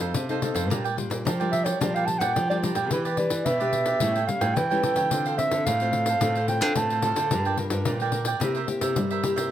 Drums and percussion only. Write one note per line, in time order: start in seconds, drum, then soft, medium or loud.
0.14 pandeiro medium
0.29 pandeiro soft
0.42 pandeiro medium
0.56 pandeiro medium
0.71 pandeiro medium
0.85 pandeiro soft
0.98 pandeiro medium
1.11 pandeiro medium
1.27 pandeiro medium
1.41 pandeiro soft
1.53 pandeiro medium
1.66 pandeiro medium
1.81 pandeiro medium
1.96 pandeiro soft
2.08 pandeiro medium
2.21 pandeiro medium
2.36 pandeiro medium
2.51 pandeiro soft
2.63 pandeiro medium
2.75 pandeiro medium
2.91 pandeiro medium
3.05 pandeiro soft
3.17 pandeiro medium
3.30 pandeiro medium
3.46 pandeiro medium
3.60 pandeiro soft
3.73 pandeiro medium
3.86 pandeiro medium
4.00 pandeiro medium
4.16 pandeiro soft
4.29 pandeiro medium
4.41 pandeiro medium
4.57 pandeiro medium
4.71 pandeiro soft
4.83 pandeiro medium
4.96 pandeiro medium
5.11 pandeiro medium
5.26 pandeiro soft
5.39 pandeiro medium
5.51 pandeiro medium
5.67 pandeiro medium
5.80 pandeiro soft
5.93 pandeiro medium
6.06 pandeiro medium
6.21 pandeiro medium
6.35 pandeiro soft
6.48 pandeiro medium
6.61 pandeiro medium
6.76 pandeiro medium
6.90 pandeiro soft
7.02 pandeiro medium
7.16 pandeiro medium
7.31 pandeiro medium
7.45 pandeiro soft
7.58 pandeiro medium
7.70 pandeiro medium
7.85 pandeiro medium
8.00 pandeiro soft
8.12 pandeiro medium
8.25 pandeiro medium
8.41 pandeiro medium
8.55 pandeiro soft
8.68 pandeiro medium
8.81 pandeiro medium
8.96 pandeiro medium
9.10 pandeiro soft
9.24 pandeiro medium
9.38 pandeiro medium